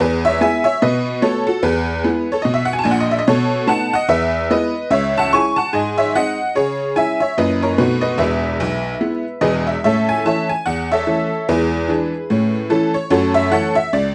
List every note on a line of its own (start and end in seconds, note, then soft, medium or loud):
0.00 0.34 E2 medium
0.00 0.23 G#4 medium
0.00 0.24 B4 medium
0.25 0.41 C#5 medium
0.25 0.41 E5 loud
0.41 0.63 G#3 soft
0.41 0.63 B3 soft
0.41 0.64 E4 soft
0.41 0.63 E5 medium
0.41 0.65 G#5 medium
0.64 0.80 C#5 medium
0.64 0.81 E5 medium
0.82 1.16 B2 medium
0.82 1.20 B4 medium
0.82 1.22 D#5 medium
1.22 1.44 A3 medium
1.22 1.45 B3 soft
1.22 1.45 F#4 soft
1.22 1.45 A4 medium
1.22 1.47 C#5 medium
1.47 1.63 F#4 medium
1.47 1.63 A4 medium
1.63 1.98 E2 medium
1.63 2.28 G#4 medium
1.63 2.32 B4 medium
2.04 2.26 G#3 soft
2.04 2.27 B3 soft
2.04 2.27 E4 medium
2.32 2.42 A4 medium
2.32 2.43 C#5 medium
2.42 2.80 B2 medium
2.42 2.54 D#5 medium
2.54 2.65 E5 medium
2.65 2.73 F#5 medium
2.73 2.79 G#5 medium
2.79 2.84 A5 medium
2.84 3.18 A#1 medium
2.84 3.18 A#2 medium
2.84 2.92 G#5 medium
2.91 3.01 F#5 medium
3.00 3.11 D#5 medium
3.11 3.19 E5 medium
3.19 3.27 D#5 medium
3.27 3.62 B2 medium
3.27 3.66 A4 medium
3.27 3.68 C#5 medium
3.67 3.90 A3 soft
3.67 3.90 B3 soft
3.67 3.91 D#4 soft
3.67 3.91 F#5 medium
3.67 3.92 A5 medium
3.93 4.09 D#5 medium
3.93 4.09 F#5 medium
4.09 4.44 E2 medium
4.09 4.47 B4 medium
4.09 4.50 E5 medium
4.50 4.72 G#3 soft
4.50 4.73 B3 soft
4.50 4.73 E4 soft
4.50 4.89 B4 medium
4.50 4.91 D#5 medium
4.91 5.26 C#2 medium
4.91 5.15 C#5 medium
4.91 5.15 E5 medium
5.18 5.33 F#5 medium
5.18 5.33 A5 medium
5.33 5.55 G#3 soft
5.33 5.56 C#4 soft
5.33 5.56 E4 soft
5.33 5.56 G#5 medium
5.33 5.57 C#6 medium
5.56 5.72 F#5 medium
5.56 5.73 A5 medium
5.73 6.08 G#2 medium
5.73 5.97 D#5 medium
5.73 5.98 G#5 medium
5.98 6.14 C#5 soft
5.98 6.14 E5 medium
6.15 6.37 G#3 soft
6.15 6.38 C4 soft
6.15 6.38 D#4 soft
6.15 6.54 D#5 medium
6.15 6.56 F#5 medium
6.55 6.90 C#3 medium
6.55 6.94 G#4 medium
6.55 6.96 C#5 medium
6.96 7.19 G#3 soft
6.96 7.19 C#4 soft
6.96 7.19 E4 soft
6.96 7.19 E5 medium
6.96 7.21 G#5 medium
7.20 7.37 C#5 soft
7.20 7.37 E5 medium
7.37 7.73 F#2 medium
7.37 7.60 A#3 soft
7.37 7.61 C#4 soft
7.37 7.61 E4 soft
7.37 7.61 B4 medium
7.37 7.62 D#5 medium
7.62 7.78 A#4 medium
7.62 7.79 C#5 medium
7.78 8.13 B2 medium
7.78 8.01 A3 soft
7.78 8.01 C4 soft
7.78 8.02 D#4 soft
7.78 8.02 F#4 medium
7.78 8.01 B4 medium
8.01 8.18 B4 medium
8.01 8.19 D#5 medium
8.18 8.52 E1 medium
8.18 8.51 E2 medium
8.18 9.41 B4 medium
8.18 9.65 E5 medium
8.60 8.93 B1 medium
9.01 9.24 G#3 soft
9.01 9.23 B3 soft
9.01 9.24 E4 soft
9.41 9.75 E1 medium
9.41 9.75 E2 medium
9.41 9.65 G#4 medium
9.41 9.65 B4 medium
9.41 9.66 D#5 medium
9.67 9.83 E5 soft
9.84 10.19 A2 medium
9.84 10.09 C#4 soft
9.84 10.08 A4 medium
9.84 10.07 C#5 medium
9.84 10.08 E5 medium
10.09 10.25 G#5 medium
10.26 10.48 E3 soft
10.26 10.48 A3 soft
10.26 10.48 C#4 soft
10.26 10.49 C#5 soft
10.26 10.49 E5 medium
10.26 10.50 A5 medium
10.49 10.66 G#5 medium
10.66 11.01 E2 medium
10.66 10.90 F#5 medium
10.92 11.45 A4 medium
10.92 11.45 C#5 soft
10.92 11.48 E5 medium
11.07 11.29 E3 soft
11.07 11.29 A3 soft
11.07 11.30 C#4 soft
11.49 11.83 E2 medium
11.49 11.72 G#3 soft
11.49 12.51 E4 medium
11.49 12.51 G#4 medium
11.49 12.55 B4 medium
11.88 12.11 E3 soft
11.88 12.11 G#3 soft
11.88 12.12 D4 soft
12.30 12.65 A2 medium
12.30 12.54 C#4 medium
12.70 12.92 E3 soft
12.70 12.93 A3 soft
12.70 12.93 C#4 medium
12.70 12.93 E4 medium
12.70 12.95 A4 medium
12.94 13.09 C#5 medium
13.10 13.46 F#2 medium
13.10 13.34 A3 medium
13.10 13.34 F#4 medium
13.10 13.34 A4 medium
13.10 13.35 C#5 medium
13.34 13.51 E5 medium
13.51 13.74 E3 soft
13.51 13.74 A3 medium
13.51 13.75 C#4 soft
13.51 13.75 A4 medium
13.51 13.75 C#5 medium
13.51 13.76 F#5 medium
13.75 13.92 E5 medium
13.93 14.15 C#2 medium
13.93 14.15 D5 medium